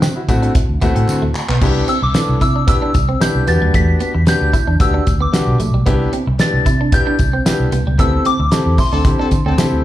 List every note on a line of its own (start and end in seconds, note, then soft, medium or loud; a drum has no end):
0.02 0.13 C4 medium
0.02 snare loud
0.02 tambourine medium
0.16 0.21 E4 medium
0.16 0.21 F#4 medium
0.28 0.48 A2 medium
0.28 0.50 A3 loud
0.28 0.51 C4 medium
0.28 0.51 E4 medium
0.28 0.51 F#4 loud
0.28 muted clean electric guitar stroke soft
0.28 kick medium
0.28 closed hi-hat medium
0.28 tambourine medium
0.42 0.52 D4 medium
0.42 closed hi-hat soft
0.55 muted clean electric guitar stroke soft
0.55 kick loud
0.55 closed hi-hat loud
0.55 tambourine medium
0.69 0.78 D2 medium
0.81 0.92 D2 medium
0.81 1.20 A3 loud
0.81 0.93 B3 medium
0.81 1.20 C4 medium
0.81 1.20 E4 loud
0.81 1.20 F#4 loud
0.81 kick medium
0.81 closed hi-hat medium
0.81 tambourine soft
0.95 1.05 A2 medium
0.95 1.05 C4 medium
0.95 closed hi-hat soft
1.08 1.18 D3 medium
1.08 clap medium
1.08 tambourine loud
1.22 1.31 D2 medium
1.22 1.32 A3 medium
1.35 muted clean electric guitar stroke soft
1.35 clap medium
1.35 tambourine medium
1.49 1.58 B1 medium
1.49 1.59 B3 medium
1.49 clap medium
1.61 1.80 C2 loud
1.61 1.73 B3 medium
1.61 1.83 B3 medium
1.61 1.84 D4 medium
1.61 1.84 E4 medium
1.61 1.84 G4 loud
1.61 kick loud
1.61 crash loud
1.61 tambourine soft
1.88 1.99 C4 medium
1.88 2.03 E6 medium
1.88 closed hi-hat medium
1.88 tambourine soft
2.02 2.11 C2 loud
2.02 2.43 D6 medium
2.02 muted clean electric guitar stroke soft
2.14 2.36 B3 medium
2.14 2.36 D4 medium
2.14 2.37 E4 medium
2.14 2.37 A4 medium
2.14 muted clean electric guitar stroke soft
2.14 snare loud
2.14 closed hi-hat medium
2.14 tambourine medium
2.29 2.38 C2 loud
2.41 2.70 C3 loud
2.41 2.52 E4 medium
2.41 2.68 E6 medium
2.41 kick medium
2.41 closed hi-hat medium
2.41 tambourine medium
2.56 2.65 D4 medium
2.67 2.89 B3 medium
2.67 2.89 D4 medium
2.67 2.89 E4 medium
2.67 2.90 G4 medium
2.67 3.23 E6 medium
2.67 kick loud
2.67 closed hi-hat loud
2.67 tambourine medium
2.82 2.92 D4 medium
2.94 3.14 C2 medium
2.94 muted clean electric guitar stroke soft
2.94 kick loud
2.94 closed hi-hat medium
2.94 tambourine medium
3.09 3.18 C4 medium
3.20 3.42 B3 medium
3.20 3.42 D4 medium
3.20 3.43 E4 medium
3.20 3.43 G4 medium
3.20 3.49 G6 loud
3.20 muted clean electric guitar stroke soft
3.20 snare loud
3.20 closed hi-hat loud
3.20 tambourine loud
3.35 3.44 C2 medium
3.47 3.57 E2 loud
3.47 4.12 B3 medium
3.47 3.59 B3 medium
3.47 4.12 D4 medium
3.47 4.12 F#4 medium
3.47 4.12 G4 medium
3.47 3.75 A6 medium
3.47 closed hi-hat medium
3.47 tambourine soft
3.61 3.70 D#2 medium
3.61 3.71 G3 medium
3.74 3.93 E2 loud
3.74 3.85 A3 medium
3.74 4.29 B6 loud
3.74 kick loud
3.74 closed hi-hat medium
4.00 4.12 B3 medium
4.00 closed hi-hat medium
4.00 tambourine soft
4.15 4.24 E2 loud
4.15 muted clean electric guitar stroke soft
4.27 4.49 B3 medium
4.27 4.49 D4 medium
4.27 4.49 F#4 medium
4.27 4.49 G4 medium
4.27 4.82 G6 loud
4.27 muted clean electric guitar stroke soft
4.27 snare loud
4.27 closed hi-hat medium
4.27 tambourine medium
4.41 4.50 D2 medium
4.53 4.64 E4 medium
4.53 kick medium
4.53 closed hi-hat medium
4.53 tambourine medium
4.67 4.77 E2 medium
4.67 4.77 D4 medium
4.80 4.99 D2 medium
4.80 5.02 B3 medium
4.80 5.02 D4 medium
4.80 5.02 F#4 medium
4.80 5.02 G4 medium
4.80 5.22 E6 medium
4.80 kick loud
4.80 closed hi-hat loud
4.80 tambourine medium
4.94 5.04 D4 medium
5.06 5.26 D2 medium
5.06 muted clean electric guitar stroke soft
5.06 kick medium
5.06 closed hi-hat medium
5.06 tambourine medium
5.20 5.30 B3 medium
5.20 5.58 D6 medium
5.33 5.55 B3 medium
5.33 5.55 D4 medium
5.33 5.55 F#4 medium
5.33 5.55 G4 medium
5.33 muted clean electric guitar stroke soft
5.33 snare loud
5.33 closed hi-hat medium
5.33 tambourine loud
5.47 5.56 B1 medium
5.60 5.70 A#1 loud
5.60 5.71 A3 medium
5.60 closed hi-hat medium
5.60 tambourine medium
5.74 5.83 B1 medium
5.74 5.84 G3 medium
5.86 6.05 C2 loud
5.86 6.08 B3 medium
5.86 5.98 B3 medium
5.86 6.08 D4 medium
5.86 6.08 E4 medium
5.86 6.08 G4 loud
5.86 kick loud
5.86 closed hi-hat medium
6.13 6.24 C4 medium
6.13 closed hi-hat medium
6.27 6.36 C2 loud
6.27 muted clean electric guitar stroke soft
6.39 6.61 B3 medium
6.39 6.61 D4 medium
6.39 6.61 E4 medium
6.39 6.61 G4 medium
6.39 6.95 A6 loud
6.39 muted clean electric guitar stroke soft
6.39 snare loud
6.39 closed hi-hat medium
6.39 tambourine medium
6.53 6.62 C2 loud
6.66 6.95 C3 loud
6.66 6.77 E4 medium
6.66 kick medium
6.66 closed hi-hat medium
6.66 tambourine medium
6.81 6.90 D4 medium
6.92 7.14 B3 medium
6.92 7.14 D4 medium
6.92 7.14 E4 medium
6.92 7.15 G4 medium
6.92 7.95 G6 loud
6.92 kick loud
6.92 closed hi-hat loud
6.92 tambourine soft
7.07 7.17 D4 medium
7.19 7.38 C2 loud
7.19 muted clean electric guitar stroke soft
7.19 kick medium
7.19 closed hi-hat medium
7.19 tambourine medium
7.33 7.43 C4 medium
7.46 7.67 B3 medium
7.46 7.67 D4 medium
7.46 7.68 E4 medium
7.46 7.68 G4 medium
7.46 muted clean electric guitar stroke soft
7.46 snare loud
7.46 closed hi-hat loud
7.46 tambourine loud
7.60 7.69 C2 medium
7.72 7.82 C2 medium
7.72 7.83 B3 medium
7.72 closed hi-hat medium
7.72 tambourine medium
7.87 7.95 C#2 medium
7.87 7.97 G3 medium
7.98 8.18 D2 loud
7.98 8.10 B3 medium
7.98 8.20 C4 medium
7.98 8.20 E4 medium
7.98 8.21 G4 medium
7.98 8.21 A4 medium
7.98 8.27 E6 loud
7.98 kick loud
7.98 closed hi-hat medium
8.25 8.37 C4 medium
8.25 8.80 D6 loud
8.25 closed hi-hat medium
8.39 8.48 D2 loud
8.39 muted clean electric guitar stroke soft
8.51 8.73 C4 medium
8.51 8.73 E4 medium
8.51 8.74 G4 medium
8.51 8.74 A4 medium
8.51 muted clean electric guitar stroke soft
8.51 snare loud
8.51 closed hi-hat medium
8.51 tambourine medium
8.66 8.75 E2 loud
8.78 8.89 E4 medium
8.78 9.81 C6 medium
8.78 kick medium
8.78 open hi-hat medium
8.78 tambourine medium
8.92 9.01 D2 medium
8.92 9.03 D3 medium
8.92 9.03 C4 medium
8.92 9.02 D4 medium
8.92 9.03 A4 medium
9.04 9.15 D3 loud
9.04 9.26 C4 medium
9.04 9.27 E4 medium
9.04 9.27 G4 medium
9.04 9.27 A4 medium
9.04 kick loud
9.04 closed hi-hat loud
9.04 tambourine medium
9.19 9.30 D3 medium
9.19 9.30 C4 medium
9.19 9.29 D4 medium
9.19 9.30 A4 medium
9.31 9.42 D3 loud
9.31 muted clean electric guitar stroke soft
9.31 kick loud
9.31 closed hi-hat medium
9.31 tambourine medium
9.46 9.55 D2 medium
9.46 9.56 D3 medium
9.46 9.56 C4 medium
9.46 9.56 A4 loud
9.58 9.68 D3 loud
9.58 9.80 C4 medium
9.58 9.80 E4 medium
9.58 9.80 G4 medium
9.58 9.80 A4 medium
9.58 muted clean electric guitar stroke soft
9.58 snare loud
9.58 closed hi-hat loud
9.58 tambourine medium
9.72 9.81 D2 medium